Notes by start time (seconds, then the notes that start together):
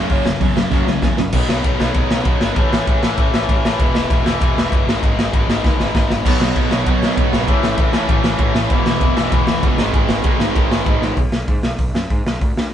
Already playing: F#2 C#3 F#3
0.10 F#1 F#2 C#3 F#3, kick, open hi-hat
0.25 F#1 F#2 C#3, snare
0.40 E2 F#2 C#3 F#3, kick, open hi-hat
0.55 F#1 F#2 C#3, snare
0.71 F#1 F#2 C#3 F#3, kick, snare
0.87 C#2 F#2 C#3, snare
1.01 E2 F#2 C#3, kick, snare
1.17 F#1 F#2 C#3, snare
1.33 B1 B2 D#3 F#3 B3 D#4, kick, crash
1.49 B1, snare
1.63 B1 B2 D#3 F#3 B3 D#4, kick, ride
1.80 B1 B2 D#3 F#3 B3 D#4, snare
1.94 B1 B2 D#3 F#3 B3 D#4, kick, ride
2.10 B1, snare
2.25 B1 B2 D#3 F#3 B3 D#4, kick, ride
2.41 G#1 B2 D#3 F#3 B3 D#4, snare
2.56 A1 A2 E3 A3 C#4 E4, kick, ride
2.72 A1, snare
2.87 A1 A2 E3 A3 C#4 E4, kick, ride
3.02 A1 A2 E3 A3 C#4 E4, snare
3.18 A1 A2 E3 A3 C#4 E4, kick, ride
3.34 A1, snare
3.49 A1 A2 E3 A3 C#4 E4, kick, ride
3.64 A1 A2 E3 A3 C#4 E4, snare
3.79 E1 E2 B2 E3 G#3 B3 E4, kick, ride
3.95 E1, snare
4.10 E1 E3 G#3 B3 E4, kick, ride
4.26 E1 E2 B2 E3 G#3 B3 E4, snare
4.41 E1 E3 G#3 B3 E4, kick, ride
4.57 E1, snare
4.72 F#1 E3 G#3 B3 E4, kick, ride
4.86 G#1 G#2 D#3 G#3 B3 D#4, snare
5.03 G#1 G#2 D#3 G#3 B3 D#4, kick, ride
5.17 G#1, snare
5.33 G#1 G#2 D#3 G#3 B3 D#4, kick, ride
5.47 G#1 G#2 D#3 G#3 B3 D#4, snare
5.64 G#1 G#2 D#3 G#3 B3 D#4, kick, snare
5.80 G#1, snare
5.95 G#1 G#2 D#3 G#3 B3 D#4, kick, snare
6.10 G#1 G#2 D#3 G#3 B3 D#4, snare
6.25 B1 B2 D#3 F#3 B3 D#4, kick, crash
6.40 B1, snare
6.56 B1 B2 D#3 F#3 B3 D#4, kick, ride
6.71 B1 B2 D#3 F#3 B3 D#4, snare
6.86 B1 B2 D#3 F#3 B3 D#4, kick, ride
7.02 B1, snare
7.17 B1 B2 D#3 F#3 B3 D#4, kick, ride
7.33 G#1 B2 D#3 F#3 B3 D#4, snare
7.48 A1 A2 E3 A3 C#4 E4, kick, ride
7.62 A1, snare
7.78 A1 A2 E3 A3 C#4 E4, kick, ride
7.92 A1 E3 A3 C#4 E4, snare
7.96 A2
8.08 A1 A2 E3 A3 C#4 E4, kick, ride
8.23 A1, snare
8.39 A1 A2 E3 A3 C#4 E4, kick, ride
8.54 A1 A2 E3 A3 C#4 E4, snare
8.69 E1 E2 B2 E3 G#3 B3, kick, ride
8.73 E4
8.85 E1, snare
9.00 E1 E2 B2 E3 G#3 B3 E4, kick, ride
9.16 E1 E2 B2 E3 G#3 B3 E4, snare
9.31 E1 E2 B2 E3 G#3 B3 E4, kick, ride
9.47 E1, snare
9.62 G1 E2 B2 E3 G#3 B3 E4, kick, ride
9.78 G#1 G#2 D#3 G#3 B3 D#4, snare
9.94 G#1 G#2 D#3 G#3 B3 D#4, kick, ride
10.09 G#1, snare
10.24 G#1 G#2 D#3 G#3 B3 D#4, kick, ride
10.38 G#1 G#2 D#3 G#3 B3 D#4, snare
10.56 G#1 G#2 D#3 G#3 B3 D#4, kick, ride
10.70 G#1, snare
10.86 G#1 G#2 D#3 G#3 B3 D#4, kick, ride
11.01 A1 G#2 D#3 G#3 B3 D#4, snare
11.17 B1, kick, open hi-hat
11.32 B1, snare
11.48 G#2, kick, open hi-hat
11.63 B1, snare
11.78 B1, kick, open hi-hat
11.94 F#2, snare
12.10 G#2, kick, open hi-hat
12.25 B1, snare
12.41 D2, kick, open hi-hat
12.57 D2, snare